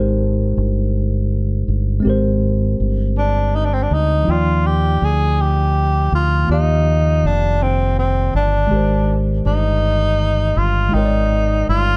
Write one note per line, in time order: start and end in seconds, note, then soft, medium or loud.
0.00 0.53 G#1 medium
0.00 1.98 G#3 medium
0.00 2.00 D#4 medium
0.00 2.01 G4 medium
0.00 2.02 A#4 medium
0.00 2.03 C5 medium
0.57 1.64 G1 medium
1.68 2.01 G1 medium
2.00 4.21 G#3 medium
2.00 4.22 C4 medium
2.05 2.75 G#1 medium
2.05 4.23 G4 medium
2.05 4.24 A#4 medium
2.10 4.25 C5 medium
2.80 3.86 G1 medium
3.18 3.57 D4 medium
3.55 3.67 D#4 medium
3.65 3.75 D4 medium
3.73 3.84 C4 medium
3.83 3.95 D4 medium
3.91 4.24 D2 medium
3.91 4.32 D#4 medium
4.22 6.43 F3 medium
4.22 6.44 D#4 soft
4.27 4.98 D#2 medium
4.27 6.45 F4 soft
4.27 4.68 F4 medium
4.27 6.46 G5 medium
4.32 6.48 D5 medium
4.66 5.06 G4 medium
5.02 6.09 D2 medium
5.02 5.43 G#4 loud
5.41 6.13 G4 medium
6.12 6.45 D2 medium
6.12 6.48 F4 medium
6.45 8.65 D#3 medium
6.45 8.66 A#3 soft
6.49 7.25 D#2 medium
6.49 7.28 D#4 medium
6.49 8.67 F4 medium
6.49 8.69 G4 medium
6.54 8.70 F5 medium
7.24 8.30 F1 medium
7.24 7.64 D4 medium
7.62 7.98 C4 medium
7.99 8.32 C4 medium
8.35 8.68 G1 medium
8.35 9.15 D4 medium
8.67 10.89 D#3 medium
8.67 10.87 G#3 medium
8.71 9.41 G#1 medium
8.71 10.89 G4 medium
8.71 10.91 A#4 soft
8.76 10.92 C5 medium
9.46 10.53 G1 medium
9.46 10.59 D#4 loud
10.57 10.90 G1 medium
10.57 10.95 F4 medium
10.89 11.97 G#3 medium
10.89 11.97 D#4 soft
10.93 11.64 G#1 medium
10.93 11.68 D#4 medium
10.93 11.97 A#4 soft
10.93 11.97 G5 soft
10.98 11.02 C#5 soft
11.05 11.97 D5 medium
11.69 11.97 G1 medium
11.69 11.97 F4 medium